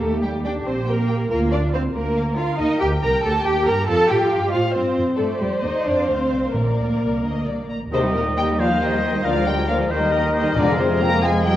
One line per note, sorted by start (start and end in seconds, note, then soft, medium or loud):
0.00 0.55 D#2 medium
0.00 0.23 A3 medium
0.00 1.26 G4 medium
0.00 0.23 A4 medium
0.22 0.45 G3 medium
0.22 0.43 G4 medium
0.22 0.30 G5 soft
0.45 0.66 D4 medium
0.45 0.53 D5 medium
0.45 0.52 G5 soft
0.66 1.20 A#1 medium
0.66 0.87 C4 medium
0.66 0.87 C5 medium
0.86 1.29 A#3 medium
0.86 1.29 A#4 medium
0.86 0.93 G5 soft
1.07 1.14 G5 medium
1.30 1.84 D2 medium
1.30 1.52 A#3 medium
1.30 1.94 F4 medium
1.30 1.38 A#4 medium
1.51 1.73 D4 medium
1.51 1.60 D5 medium
1.51 1.59 F5 soft
1.73 1.81 C4 medium
1.73 1.82 C5 medium
1.73 1.80 F5 medium
1.94 2.48 D2 medium
1.94 2.37 A#3 medium
1.94 2.36 A#4 medium
1.94 3.20 A#4 medium
2.16 2.23 F5 medium
2.37 2.59 F4 medium
2.37 2.58 F5 medium
2.37 2.44 F5 medium
2.58 2.67 D#2 medium
2.58 2.79 D#4 medium
2.58 2.80 D#5 medium
2.58 3.83 G5 medium
2.79 3.01 D2 medium
2.79 2.88 G4 medium
2.79 2.87 G5 medium
3.01 3.11 C2 medium
3.01 3.22 A#4 medium
3.01 3.22 A#5 medium
3.22 3.44 D2 medium
3.22 3.87 G4 medium
3.22 3.30 A4 medium
3.22 3.43 A5 medium
3.44 3.65 D#2 medium
3.44 3.65 G4 loud
3.44 3.66 G5 medium
3.65 3.87 G2 medium
3.65 3.87 A#4 medium
3.65 3.87 A#5 medium
3.86 3.95 F2 medium
3.86 5.15 F4 medium
3.86 4.08 A4 loud
3.86 4.51 F5 medium
3.86 4.08 A5 medium
4.08 4.17 A2 medium
4.08 4.52 G4 medium
4.08 4.52 G5 medium
4.30 4.52 G2 medium
4.51 4.74 A2 medium
4.51 4.60 F4 medium
4.51 5.17 C5 medium
4.51 4.73 F5 medium
4.73 4.82 G2 medium
4.73 4.96 C4 medium
4.73 4.95 C5 medium
4.97 5.05 F2 medium
5.17 5.26 G2 medium
5.17 5.39 A3 medium
5.17 5.25 A4 medium
5.17 6.51 C5 medium
5.17 5.84 D5 medium
5.38 5.48 F2 medium
5.38 5.62 G3 medium
5.38 5.61 G4 medium
5.60 5.70 D#2 medium
5.60 5.85 D#4 medium
5.60 5.83 D#5 medium
5.84 6.08 F2 medium
5.84 6.08 D4 medium
5.84 6.07 D5 medium
5.84 6.54 F5 soft
6.07 6.31 D2 medium
6.07 6.54 C4 medium
6.07 6.54 C5 medium
6.32 6.55 C2 medium
6.54 6.77 A#1 medium
6.54 7.20 A#2 medium
6.54 7.68 A#3 medium
6.54 7.58 A#4 medium
6.54 7.70 A#4 medium
6.54 7.18 D5 soft
6.78 6.86 D2 soft
7.02 7.24 C2 soft
7.23 7.47 D2 soft
7.23 7.45 D#5 medium
7.46 7.70 C2 soft
7.46 7.70 D5 soft
7.70 7.92 A1 soft
7.70 7.78 A#5 medium
7.92 9.21 D#2 medium
7.92 8.13 C3 medium
7.92 8.03 C3 medium
7.92 8.03 D#3 medium
7.92 8.03 A#3 soft
7.92 8.03 G4 medium
7.92 7.99 G#4 medium
7.92 8.03 A#4 medium
7.92 8.01 C5 medium
7.92 8.61 D#5 medium
8.03 8.15 G3 soft
8.03 8.15 D#4 medium
8.03 8.12 G4 medium
8.13 8.36 A#2 medium
8.13 8.24 A#2 medium
8.13 8.26 D#3 soft
8.13 8.26 A#3 soft
8.13 8.24 G4 soft
8.13 8.21 G4 soft
8.13 8.25 A#4 soft
8.13 8.24 A#4 medium
8.25 8.37 G3 soft
8.25 8.37 D#4 soft
8.25 8.35 G4 soft
8.37 8.48 D#3 medium
8.37 8.58 G3 medium
8.37 8.59 G3 medium
8.37 8.48 A#3 soft
8.37 8.47 G4 soft
8.37 8.47 A#4 soft
8.37 8.59 D#5 medium
8.37 8.45 G5 medium
8.49 8.60 G3 soft
8.49 8.59 D#4 soft
8.49 8.58 G4 soft
8.59 8.70 D#3 medium
8.59 8.69 F3 medium
8.59 8.81 F3 medium
8.59 8.70 A#3 soft
8.59 8.68 G4 medium
8.59 8.70 A#4 medium
8.59 9.26 C5 medium
8.59 8.65 D5 medium
8.59 8.81 F5 medium
8.69 8.81 G3 soft
8.69 8.81 D#4 soft
8.69 8.79 G4 soft
8.80 9.24 D#3 medium
8.80 8.92 D#3 medium
8.80 8.92 A#3 medium
8.80 8.90 G4 medium
8.80 8.90 A#4 soft
8.80 9.24 C5 medium
8.80 9.25 D#5 medium
8.91 9.03 G3 medium
8.91 9.03 D#4 soft
8.91 9.02 G4 soft
9.03 9.14 D#3 soft
9.03 9.14 A#3 soft
9.03 9.13 G4 soft
9.03 9.14 A#4 medium
9.14 9.25 G3 soft
9.14 9.25 D#4 soft
9.14 9.25 G4 soft
9.24 9.89 D2 medium
9.24 9.35 D3 soft
9.24 9.46 F3 medium
9.24 9.35 A#3 medium
9.24 9.35 F4 medium
9.24 9.92 A#4 medium
9.24 9.35 A#4 medium
9.24 9.46 D5 medium
9.24 9.46 F5 medium
9.35 9.47 F3 soft
9.35 9.47 G#3 soft
9.35 9.47 G#4 medium
9.35 9.46 D5 soft
9.46 9.57 D3 medium
9.46 9.67 G3 medium
9.46 9.68 G3 medium
9.46 9.57 A#3 soft
9.46 9.57 F4 medium
9.46 9.57 A#4 soft
9.46 9.54 D#5 medium
9.46 9.68 G5 medium
9.57 9.68 F3 medium
9.57 9.68 G#3 soft
9.57 9.68 G#4 soft
9.57 9.68 D5 soft
9.67 9.79 D3 soft
9.67 9.77 F3 medium
9.67 9.90 F3 medium
9.67 9.78 A#3 soft
9.67 9.78 F4 soft
9.67 9.77 A#4 soft
9.67 9.76 D5 medium
9.67 9.77 F5 medium
9.79 9.90 F3 soft
9.79 9.90 G#3 medium
9.79 9.90 G#4 medium
9.79 9.90 D5 medium
9.89 10.55 D#2 medium
9.89 10.00 D#3 medium
9.89 10.54 D#3 medium
9.89 10.56 D#3 medium
9.89 10.00 A#3 medium
9.89 9.99 G4 medium
9.89 9.99 A#4 medium
9.89 10.55 A#4 medium
9.89 10.13 C5 medium
9.89 10.54 D#5 medium
9.99 10.11 G3 soft
9.99 10.11 D#4 soft
9.99 10.10 G4 soft
9.99 10.11 A#4 soft
10.11 10.22 D#3 medium
10.11 10.22 A#3 medium
10.11 10.21 G4 soft
10.11 10.21 A#4 soft
10.11 10.35 A#4 medium
10.22 10.33 G3 soft
10.22 10.33 D#4 soft
10.22 10.33 G4 medium
10.22 10.33 A#4 medium
10.33 10.44 D#3 medium
10.33 10.44 A#3 medium
10.33 10.44 G4 soft
10.33 10.43 A#4 medium
10.33 10.55 C5 medium
10.44 10.55 G3 soft
10.44 10.55 D#4 soft
10.44 10.56 G4 medium
10.44 10.56 A#4 soft
10.55 11.18 F2 medium
10.55 11.56 F2 medium
10.55 10.78 D3 medium
10.55 10.66 F3 medium
10.55 10.66 C4 medium
10.55 10.66 G#4 medium
10.55 11.20 A#4 medium
10.55 10.78 A#4 loud
10.55 10.66 C5 medium
10.55 10.79 D5 loud
10.67 10.79 G#3 medium
10.67 10.78 F4 medium
10.67 10.77 G#4 medium
10.78 10.87 C3 medium
10.78 11.01 C3 medium
10.78 10.89 F3 medium
10.78 10.89 C4 soft
10.78 10.88 G#4 soft
10.78 11.00 G#4 medium
10.78 10.89 C5 medium
10.78 11.01 C5 medium
10.89 11.00 G#3 medium
10.89 11.00 F4 soft
10.89 10.98 G#4 medium
10.99 11.10 F3 medium
10.99 11.08 A#3 medium
10.99 11.22 A#3 medium
10.99 11.11 C4 medium
10.99 11.09 G#4 medium
10.99 11.10 C5 soft
10.99 11.23 G5 medium
10.99 11.22 A#5 loud
11.10 11.22 G#3 medium
11.10 11.21 F4 medium
11.10 11.19 G#4 medium
11.20 11.33 F3 soft
11.20 11.43 G#3 medium
11.20 11.45 G#3 medium
11.20 11.33 C4 medium
11.20 11.31 G#4 medium
11.20 11.56 G#4 medium
11.20 11.32 C5 medium
11.20 11.45 F5 medium
11.20 11.44 G#5 medium
11.32 11.44 G#3 soft
11.32 11.43 F4 soft
11.32 11.42 G#4 medium
11.43 11.54 F3 medium
11.43 11.56 G3 medium
11.43 11.53 C4 medium
11.43 11.53 G#4 medium
11.43 11.53 C5 medium
11.43 11.56 D#5 medium
11.43 11.56 G5 medium